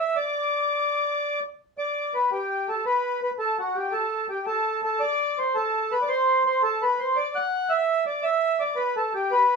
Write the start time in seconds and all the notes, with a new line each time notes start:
0.00 E5
0.16 D5
1.78 D5
2.14 B4
2.32 G4
2.69 A4
2.86 B4
3.23 B4
3.39 A4
3.59 F#4
3.76 G4
3.92 A4
4.30 G4
4.46 A4
4.84 A4
5.00 D5
5.39 C5
5.55 A4
5.92 B4
6.02 D5
6.09 C5
6.46 C5
6.63 A4
6.82 B4
6.99 C5
7.16 D5
7.35 F#5
7.70 E5
8.07 D5
8.23 E5
8.60 D5
8.76 B4
8.97 A4
9.14 G4
9.31 B4